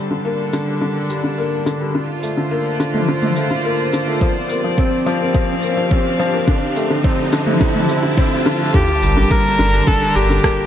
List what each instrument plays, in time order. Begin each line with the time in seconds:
Already playing: felt piano G3, string section G3 C4 D4 G4 A4, riser
0.11 felt piano D3
0.25 felt piano A#3
0.53 felt piano D3, shaker
0.67 felt piano G3
0.82 felt piano D3
1.10 felt piano G3, shaker
1.24 felt piano D3
1.38 felt piano A#3
1.66 felt piano D3, shaker
1.81 felt piano G3
1.95 felt piano D3
2.00 string section F4
2.19 felt piano A3, string section C5, shaker
2.37 felt piano D3
2.50 felt piano A#3, string section D5
2.80 felt piano D3, shaker
2.94 felt piano A3, mid tom
3.08 felt piano D3
3.22 mid tom
3.36 felt piano A3, shaker
3.51 felt piano D3
3.65 felt piano A#3
3.93 felt piano D3, shaker
4.07 felt piano A3
4.21 felt piano F3, string section C4, kick
4.42 string section G4
4.49 felt piano A#3, shaker
4.64 felt piano F3
4.78 felt piano C4, kick
5.06 felt piano F3, shaker
5.13 string section F5
5.21 felt piano A#3
5.34 felt piano F3, kick
5.63 felt piano A#3, shaker
5.77 felt piano F3
5.91 felt piano C4, kick
6.19 felt piano F3, shaker
6.34 felt piano A#3
6.47 felt piano D3, string section F3, kick
6.76 felt piano A3, shaker
6.90 felt piano D3
6.96 string section A5
7.04 felt piano C4, kick
7.32 felt piano D3, shaker
7.47 felt piano A3, mid tom
7.61 felt piano D3, kick
7.75 mid tom
7.89 felt piano A3, shaker
8.03 felt piano D3
8.17 felt piano C4, kick
8.46 felt piano D3, shaker
8.60 felt piano A3
8.74 felt piano D3, string section G3, viola G4, kick, sub drop
8.88 string section A#4, shaker
9.00 sub bass G1, felt piano G3, string section D4, shaker
9.17 felt piano D3
9.30 felt piano A#3, viola A#4, kick, shaker
9.59 sub bass G1, felt piano D3, shaker
9.73 felt piano G3
9.87 felt piano D3, viola A4, kick, shaker
10.15 sub bass G1, felt piano G3, viola G4, shaker
10.30 felt piano D3, shaker
10.44 felt piano A#3, kick, cross-stick, shaker